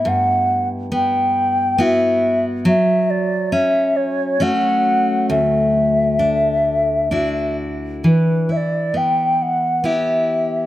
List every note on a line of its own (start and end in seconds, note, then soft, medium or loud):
0.00 0.91 B3 medium
0.00 1.79 E4 medium
0.05 2.65 G2 medium
0.05 0.67 F#5 medium
0.92 1.77 B3 medium
0.92 1.83 G5 medium
1.78 2.73 B3 medium
1.78 2.73 E4 soft
1.78 4.41 F#4 medium
1.78 2.45 E5 medium
2.65 6.15 F#3 medium
2.65 3.11 E5 medium
3.10 3.54 D5 medium
3.52 4.39 C#4 medium
3.52 3.98 E5 medium
3.96 4.44 C#5 medium
4.40 7.11 A3 medium
4.40 5.38 C#4 medium
4.40 7.12 F#4 medium
4.40 5.29 F#5 medium
5.30 8.04 D2 medium
5.30 7.54 E5 medium
6.19 7.11 D4 soft
7.11 8.52 D4 soft
7.11 8.49 E4 soft
7.11 8.13 F#4 soft
8.04 10.66 E3 medium
8.04 8.53 B4 medium
8.49 9.83 E4 soft
8.49 8.57 E5 medium
8.56 8.98 D5 medium
8.94 9.83 B3 soft
8.94 9.43 G5 medium
9.42 9.87 F#5 medium
9.84 10.66 B3 soft
9.84 10.66 E4 soft
9.84 10.66 G4 medium
9.84 10.66 E5 medium